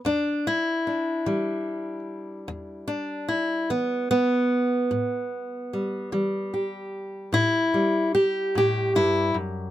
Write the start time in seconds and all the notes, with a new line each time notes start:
0.05 E2 D4
0.47 E4
0.87 D4
1.26 E3 G3
2.48 E2
2.88 D4
3.28 E4
3.70 E3 B3
4.11 B3
4.91 A2
5.73 G3
6.12 E3 G3
6.54 G4
7.33 A2 E4
7.74 G3
8.15 G4
8.55 A2 G4
8.95 G2 E4
9.34 F#2